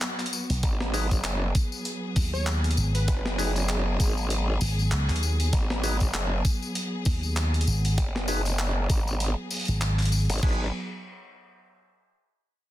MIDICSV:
0, 0, Header, 1, 7, 480
1, 0, Start_track
1, 0, Key_signature, 5, "minor"
1, 0, Tempo, 612245
1, 495, Time_signature, 4, 2, 24, 8
1, 9963, End_track
2, 0, Start_track
2, 0, Title_t, "Digital synth lead"
2, 0, Program_c, 0, 84
2, 1832, Note_on_c, 0, 73, 91
2, 1932, Note_off_c, 0, 73, 0
2, 2310, Note_on_c, 0, 71, 90
2, 2634, Note_off_c, 0, 71, 0
2, 2656, Note_on_c, 0, 68, 101
2, 3335, Note_off_c, 0, 68, 0
2, 9963, End_track
3, 0, Start_track
3, 0, Title_t, "Tonewheel organ"
3, 0, Program_c, 1, 16
3, 733, Note_on_c, 1, 63, 104
3, 733, Note_on_c, 1, 68, 89
3, 733, Note_on_c, 1, 71, 105
3, 734, Note_on_c, 1, 66, 89
3, 840, Note_off_c, 1, 63, 0
3, 841, Note_off_c, 1, 66, 0
3, 841, Note_off_c, 1, 68, 0
3, 841, Note_off_c, 1, 71, 0
3, 2654, Note_on_c, 1, 63, 99
3, 2654, Note_on_c, 1, 66, 93
3, 2654, Note_on_c, 1, 68, 93
3, 2654, Note_on_c, 1, 71, 110
3, 2761, Note_off_c, 1, 63, 0
3, 2761, Note_off_c, 1, 66, 0
3, 2761, Note_off_c, 1, 68, 0
3, 2761, Note_off_c, 1, 71, 0
3, 4575, Note_on_c, 1, 63, 99
3, 4575, Note_on_c, 1, 66, 93
3, 4575, Note_on_c, 1, 68, 87
3, 4575, Note_on_c, 1, 71, 110
3, 4681, Note_off_c, 1, 63, 0
3, 4681, Note_off_c, 1, 66, 0
3, 4682, Note_off_c, 1, 68, 0
3, 4682, Note_off_c, 1, 71, 0
3, 6493, Note_on_c, 1, 63, 96
3, 6494, Note_on_c, 1, 66, 92
3, 6494, Note_on_c, 1, 68, 89
3, 6494, Note_on_c, 1, 71, 111
3, 6601, Note_off_c, 1, 63, 0
3, 6601, Note_off_c, 1, 66, 0
3, 6601, Note_off_c, 1, 68, 0
3, 6601, Note_off_c, 1, 71, 0
3, 8175, Note_on_c, 1, 63, 91
3, 8175, Note_on_c, 1, 68, 85
3, 8175, Note_on_c, 1, 71, 95
3, 8176, Note_on_c, 1, 66, 85
3, 8360, Note_off_c, 1, 63, 0
3, 8360, Note_off_c, 1, 68, 0
3, 8360, Note_off_c, 1, 71, 0
3, 8361, Note_off_c, 1, 66, 0
3, 9963, End_track
4, 0, Start_track
4, 0, Title_t, "String section"
4, 0, Program_c, 2, 48
4, 0, Note_on_c, 2, 54, 78
4, 0, Note_on_c, 2, 59, 74
4, 0, Note_on_c, 2, 66, 88
4, 492, Note_off_c, 2, 66, 0
4, 497, Note_on_c, 2, 68, 87
4, 8145, Note_off_c, 2, 54, 0
4, 8145, Note_off_c, 2, 59, 0
4, 8168, Note_off_c, 2, 68, 0
4, 8176, Note_on_c, 2, 59, 65
4, 8177, Note_on_c, 2, 54, 74
4, 8177, Note_on_c, 2, 68, 74
4, 8399, Note_off_c, 2, 54, 0
4, 8399, Note_off_c, 2, 59, 0
4, 8400, Note_off_c, 2, 68, 0
4, 9963, End_track
5, 0, Start_track
5, 0, Title_t, "Slap bass"
5, 0, Program_c, 3, 36
5, 391, Note_on_c, 3, 35, 98
5, 478, Note_off_c, 3, 35, 0
5, 1695, Note_on_c, 3, 39, 94
5, 2159, Note_off_c, 3, 39, 0
5, 2176, Note_on_c, 3, 32, 93
5, 2399, Note_off_c, 3, 32, 0
5, 3615, Note_on_c, 3, 32, 97
5, 3839, Note_off_c, 3, 32, 0
5, 3856, Note_on_c, 3, 37, 99
5, 3971, Note_off_c, 3, 37, 0
5, 3992, Note_on_c, 3, 39, 96
5, 4319, Note_off_c, 3, 39, 0
5, 5536, Note_on_c, 3, 39, 91
5, 5999, Note_off_c, 3, 39, 0
5, 6016, Note_on_c, 3, 32, 101
5, 6239, Note_off_c, 3, 32, 0
5, 7591, Note_on_c, 3, 32, 89
5, 8050, Note_off_c, 3, 32, 0
5, 9963, End_track
6, 0, Start_track
6, 0, Title_t, "Wobble bass"
6, 0, Program_c, 4, 39
6, 496, Note_on_c, 4, 32, 97
6, 960, Note_off_c, 4, 32, 0
6, 976, Note_on_c, 4, 30, 97
6, 1199, Note_off_c, 4, 30, 0
6, 2416, Note_on_c, 4, 30, 102
6, 3119, Note_off_c, 4, 30, 0
6, 3136, Note_on_c, 4, 32, 99
6, 3599, Note_off_c, 4, 32, 0
6, 4336, Note_on_c, 4, 32, 104
6, 4799, Note_off_c, 4, 32, 0
6, 4816, Note_on_c, 4, 30, 97
6, 5039, Note_off_c, 4, 30, 0
6, 6255, Note_on_c, 4, 30, 99
6, 6959, Note_off_c, 4, 30, 0
6, 6976, Note_on_c, 4, 32, 98
6, 7331, Note_off_c, 4, 32, 0
6, 8073, Note_on_c, 4, 32, 95
6, 8159, Note_off_c, 4, 32, 0
6, 8177, Note_on_c, 4, 32, 99
6, 8399, Note_off_c, 4, 32, 0
6, 9963, End_track
7, 0, Start_track
7, 0, Title_t, "Drums"
7, 13, Note_on_c, 9, 39, 120
7, 13, Note_on_c, 9, 42, 77
7, 16, Note_on_c, 9, 54, 41
7, 92, Note_off_c, 9, 39, 0
7, 92, Note_off_c, 9, 42, 0
7, 94, Note_off_c, 9, 54, 0
7, 152, Note_on_c, 9, 39, 37
7, 152, Note_on_c, 9, 42, 48
7, 203, Note_off_c, 9, 42, 0
7, 203, Note_on_c, 9, 42, 65
7, 230, Note_off_c, 9, 39, 0
7, 258, Note_on_c, 9, 54, 98
7, 282, Note_off_c, 9, 42, 0
7, 336, Note_off_c, 9, 54, 0
7, 391, Note_on_c, 9, 42, 67
7, 395, Note_on_c, 9, 54, 50
7, 470, Note_off_c, 9, 42, 0
7, 473, Note_off_c, 9, 54, 0
7, 494, Note_on_c, 9, 42, 78
7, 496, Note_on_c, 9, 36, 117
7, 500, Note_on_c, 9, 54, 42
7, 572, Note_off_c, 9, 42, 0
7, 574, Note_off_c, 9, 36, 0
7, 579, Note_off_c, 9, 54, 0
7, 631, Note_on_c, 9, 38, 53
7, 710, Note_off_c, 9, 38, 0
7, 734, Note_on_c, 9, 46, 65
7, 737, Note_on_c, 9, 54, 91
7, 812, Note_off_c, 9, 46, 0
7, 816, Note_off_c, 9, 54, 0
7, 872, Note_on_c, 9, 42, 36
7, 873, Note_on_c, 9, 36, 60
7, 874, Note_on_c, 9, 54, 61
7, 951, Note_off_c, 9, 42, 0
7, 952, Note_off_c, 9, 36, 0
7, 953, Note_off_c, 9, 54, 0
7, 974, Note_on_c, 9, 39, 121
7, 974, Note_on_c, 9, 42, 73
7, 1052, Note_off_c, 9, 39, 0
7, 1052, Note_off_c, 9, 42, 0
7, 1214, Note_on_c, 9, 42, 62
7, 1216, Note_on_c, 9, 36, 104
7, 1216, Note_on_c, 9, 54, 100
7, 1292, Note_off_c, 9, 42, 0
7, 1294, Note_off_c, 9, 36, 0
7, 1294, Note_off_c, 9, 54, 0
7, 1350, Note_on_c, 9, 54, 56
7, 1428, Note_off_c, 9, 54, 0
7, 1450, Note_on_c, 9, 54, 42
7, 1453, Note_on_c, 9, 42, 78
7, 1528, Note_off_c, 9, 54, 0
7, 1531, Note_off_c, 9, 42, 0
7, 1693, Note_on_c, 9, 46, 62
7, 1695, Note_on_c, 9, 36, 105
7, 1696, Note_on_c, 9, 54, 88
7, 1771, Note_off_c, 9, 46, 0
7, 1774, Note_off_c, 9, 36, 0
7, 1774, Note_off_c, 9, 54, 0
7, 1839, Note_on_c, 9, 54, 51
7, 1917, Note_off_c, 9, 54, 0
7, 1934, Note_on_c, 9, 39, 114
7, 1934, Note_on_c, 9, 42, 75
7, 1936, Note_on_c, 9, 54, 41
7, 2012, Note_off_c, 9, 39, 0
7, 2012, Note_off_c, 9, 42, 0
7, 2015, Note_off_c, 9, 54, 0
7, 2072, Note_on_c, 9, 42, 50
7, 2122, Note_off_c, 9, 42, 0
7, 2122, Note_on_c, 9, 42, 64
7, 2174, Note_on_c, 9, 54, 99
7, 2200, Note_off_c, 9, 42, 0
7, 2252, Note_off_c, 9, 54, 0
7, 2312, Note_on_c, 9, 42, 65
7, 2314, Note_on_c, 9, 54, 54
7, 2390, Note_off_c, 9, 42, 0
7, 2392, Note_off_c, 9, 54, 0
7, 2412, Note_on_c, 9, 54, 34
7, 2414, Note_on_c, 9, 42, 78
7, 2416, Note_on_c, 9, 36, 117
7, 2491, Note_off_c, 9, 54, 0
7, 2492, Note_off_c, 9, 42, 0
7, 2494, Note_off_c, 9, 36, 0
7, 2552, Note_on_c, 9, 38, 58
7, 2631, Note_off_c, 9, 38, 0
7, 2654, Note_on_c, 9, 46, 65
7, 2660, Note_on_c, 9, 54, 90
7, 2733, Note_off_c, 9, 46, 0
7, 2739, Note_off_c, 9, 54, 0
7, 2791, Note_on_c, 9, 42, 37
7, 2792, Note_on_c, 9, 54, 57
7, 2869, Note_off_c, 9, 42, 0
7, 2871, Note_off_c, 9, 54, 0
7, 2893, Note_on_c, 9, 39, 112
7, 2893, Note_on_c, 9, 42, 74
7, 2972, Note_off_c, 9, 39, 0
7, 2972, Note_off_c, 9, 42, 0
7, 3134, Note_on_c, 9, 42, 66
7, 3136, Note_on_c, 9, 36, 96
7, 3140, Note_on_c, 9, 54, 99
7, 3213, Note_off_c, 9, 42, 0
7, 3214, Note_off_c, 9, 36, 0
7, 3218, Note_off_c, 9, 54, 0
7, 3272, Note_on_c, 9, 54, 55
7, 3351, Note_off_c, 9, 54, 0
7, 3374, Note_on_c, 9, 42, 80
7, 3374, Note_on_c, 9, 54, 40
7, 3452, Note_off_c, 9, 54, 0
7, 3453, Note_off_c, 9, 42, 0
7, 3612, Note_on_c, 9, 54, 96
7, 3614, Note_on_c, 9, 46, 66
7, 3691, Note_off_c, 9, 54, 0
7, 3693, Note_off_c, 9, 46, 0
7, 3754, Note_on_c, 9, 54, 54
7, 3833, Note_off_c, 9, 54, 0
7, 3854, Note_on_c, 9, 39, 114
7, 3854, Note_on_c, 9, 42, 74
7, 3932, Note_off_c, 9, 39, 0
7, 3932, Note_off_c, 9, 42, 0
7, 3993, Note_on_c, 9, 39, 36
7, 3993, Note_on_c, 9, 42, 48
7, 4044, Note_off_c, 9, 42, 0
7, 4044, Note_on_c, 9, 42, 60
7, 4071, Note_off_c, 9, 39, 0
7, 4098, Note_on_c, 9, 54, 94
7, 4122, Note_off_c, 9, 42, 0
7, 4176, Note_off_c, 9, 54, 0
7, 4232, Note_on_c, 9, 42, 65
7, 4236, Note_on_c, 9, 54, 50
7, 4310, Note_off_c, 9, 42, 0
7, 4314, Note_off_c, 9, 54, 0
7, 4334, Note_on_c, 9, 42, 79
7, 4335, Note_on_c, 9, 54, 38
7, 4336, Note_on_c, 9, 36, 114
7, 4413, Note_off_c, 9, 42, 0
7, 4413, Note_off_c, 9, 54, 0
7, 4414, Note_off_c, 9, 36, 0
7, 4471, Note_on_c, 9, 38, 56
7, 4550, Note_off_c, 9, 38, 0
7, 4574, Note_on_c, 9, 54, 92
7, 4575, Note_on_c, 9, 46, 64
7, 4653, Note_off_c, 9, 54, 0
7, 4654, Note_off_c, 9, 46, 0
7, 4706, Note_on_c, 9, 54, 55
7, 4713, Note_on_c, 9, 36, 58
7, 4713, Note_on_c, 9, 42, 37
7, 4784, Note_off_c, 9, 54, 0
7, 4791, Note_off_c, 9, 42, 0
7, 4792, Note_off_c, 9, 36, 0
7, 4815, Note_on_c, 9, 39, 107
7, 4815, Note_on_c, 9, 42, 78
7, 4816, Note_on_c, 9, 54, 36
7, 4893, Note_off_c, 9, 39, 0
7, 4893, Note_off_c, 9, 42, 0
7, 4894, Note_off_c, 9, 54, 0
7, 5055, Note_on_c, 9, 42, 67
7, 5056, Note_on_c, 9, 36, 97
7, 5057, Note_on_c, 9, 54, 90
7, 5134, Note_off_c, 9, 36, 0
7, 5134, Note_off_c, 9, 42, 0
7, 5135, Note_off_c, 9, 54, 0
7, 5193, Note_on_c, 9, 54, 49
7, 5272, Note_off_c, 9, 54, 0
7, 5293, Note_on_c, 9, 54, 38
7, 5295, Note_on_c, 9, 42, 84
7, 5371, Note_off_c, 9, 54, 0
7, 5373, Note_off_c, 9, 42, 0
7, 5529, Note_on_c, 9, 54, 90
7, 5536, Note_on_c, 9, 36, 102
7, 5536, Note_on_c, 9, 46, 69
7, 5607, Note_off_c, 9, 54, 0
7, 5614, Note_off_c, 9, 36, 0
7, 5614, Note_off_c, 9, 46, 0
7, 5669, Note_on_c, 9, 54, 51
7, 5747, Note_off_c, 9, 54, 0
7, 5774, Note_on_c, 9, 54, 39
7, 5775, Note_on_c, 9, 39, 112
7, 5775, Note_on_c, 9, 42, 77
7, 5853, Note_off_c, 9, 54, 0
7, 5854, Note_off_c, 9, 39, 0
7, 5854, Note_off_c, 9, 42, 0
7, 5914, Note_on_c, 9, 42, 47
7, 5966, Note_off_c, 9, 42, 0
7, 5966, Note_on_c, 9, 42, 67
7, 6016, Note_on_c, 9, 54, 92
7, 6044, Note_off_c, 9, 42, 0
7, 6094, Note_off_c, 9, 54, 0
7, 6151, Note_on_c, 9, 54, 49
7, 6153, Note_on_c, 9, 42, 66
7, 6230, Note_off_c, 9, 54, 0
7, 6232, Note_off_c, 9, 42, 0
7, 6255, Note_on_c, 9, 36, 120
7, 6257, Note_on_c, 9, 42, 84
7, 6257, Note_on_c, 9, 54, 38
7, 6334, Note_off_c, 9, 36, 0
7, 6335, Note_off_c, 9, 42, 0
7, 6335, Note_off_c, 9, 54, 0
7, 6395, Note_on_c, 9, 38, 58
7, 6473, Note_off_c, 9, 38, 0
7, 6490, Note_on_c, 9, 54, 95
7, 6496, Note_on_c, 9, 46, 65
7, 6568, Note_off_c, 9, 54, 0
7, 6575, Note_off_c, 9, 46, 0
7, 6627, Note_on_c, 9, 54, 60
7, 6634, Note_on_c, 9, 42, 39
7, 6705, Note_off_c, 9, 54, 0
7, 6713, Note_off_c, 9, 42, 0
7, 6733, Note_on_c, 9, 54, 38
7, 6735, Note_on_c, 9, 39, 114
7, 6735, Note_on_c, 9, 42, 83
7, 6812, Note_off_c, 9, 54, 0
7, 6813, Note_off_c, 9, 39, 0
7, 6813, Note_off_c, 9, 42, 0
7, 6974, Note_on_c, 9, 54, 89
7, 6975, Note_on_c, 9, 36, 106
7, 6975, Note_on_c, 9, 42, 67
7, 7052, Note_off_c, 9, 54, 0
7, 7054, Note_off_c, 9, 36, 0
7, 7054, Note_off_c, 9, 42, 0
7, 7115, Note_on_c, 9, 54, 57
7, 7193, Note_off_c, 9, 54, 0
7, 7214, Note_on_c, 9, 54, 44
7, 7215, Note_on_c, 9, 42, 81
7, 7292, Note_off_c, 9, 54, 0
7, 7293, Note_off_c, 9, 42, 0
7, 7452, Note_on_c, 9, 54, 85
7, 7455, Note_on_c, 9, 46, 30
7, 7479, Note_off_c, 9, 46, 0
7, 7479, Note_on_c, 9, 46, 36
7, 7500, Note_off_c, 9, 46, 0
7, 7500, Note_on_c, 9, 46, 42
7, 7524, Note_off_c, 9, 46, 0
7, 7524, Note_on_c, 9, 46, 46
7, 7530, Note_off_c, 9, 54, 0
7, 7535, Note_off_c, 9, 46, 0
7, 7535, Note_on_c, 9, 46, 52
7, 7569, Note_off_c, 9, 46, 0
7, 7569, Note_on_c, 9, 46, 58
7, 7588, Note_on_c, 9, 54, 49
7, 7592, Note_on_c, 9, 42, 35
7, 7647, Note_off_c, 9, 46, 0
7, 7666, Note_off_c, 9, 54, 0
7, 7671, Note_off_c, 9, 42, 0
7, 7694, Note_on_c, 9, 39, 114
7, 7694, Note_on_c, 9, 42, 81
7, 7697, Note_on_c, 9, 54, 37
7, 7773, Note_off_c, 9, 39, 0
7, 7773, Note_off_c, 9, 42, 0
7, 7776, Note_off_c, 9, 54, 0
7, 7831, Note_on_c, 9, 39, 37
7, 7831, Note_on_c, 9, 42, 47
7, 7857, Note_off_c, 9, 42, 0
7, 7857, Note_on_c, 9, 42, 39
7, 7883, Note_off_c, 9, 42, 0
7, 7883, Note_on_c, 9, 42, 67
7, 7909, Note_off_c, 9, 42, 0
7, 7909, Note_on_c, 9, 42, 26
7, 7910, Note_off_c, 9, 39, 0
7, 7934, Note_off_c, 9, 42, 0
7, 7934, Note_on_c, 9, 42, 22
7, 7934, Note_on_c, 9, 54, 94
7, 7969, Note_off_c, 9, 42, 0
7, 7969, Note_on_c, 9, 42, 19
7, 8002, Note_off_c, 9, 42, 0
7, 8002, Note_on_c, 9, 42, 15
7, 8013, Note_off_c, 9, 54, 0
7, 8037, Note_off_c, 9, 42, 0
7, 8037, Note_on_c, 9, 42, 12
7, 8072, Note_off_c, 9, 42, 0
7, 8072, Note_on_c, 9, 42, 69
7, 8075, Note_on_c, 9, 54, 53
7, 8095, Note_off_c, 9, 42, 0
7, 8095, Note_on_c, 9, 42, 55
7, 8140, Note_off_c, 9, 42, 0
7, 8140, Note_on_c, 9, 42, 44
7, 8153, Note_off_c, 9, 54, 0
7, 8175, Note_off_c, 9, 42, 0
7, 8175, Note_on_c, 9, 42, 36
7, 8175, Note_on_c, 9, 49, 84
7, 8176, Note_on_c, 9, 36, 117
7, 8220, Note_off_c, 9, 42, 0
7, 8220, Note_on_c, 9, 42, 30
7, 8254, Note_off_c, 9, 36, 0
7, 8254, Note_off_c, 9, 42, 0
7, 8254, Note_off_c, 9, 49, 0
7, 8254, Note_on_c, 9, 42, 25
7, 8333, Note_off_c, 9, 42, 0
7, 9963, End_track
0, 0, End_of_file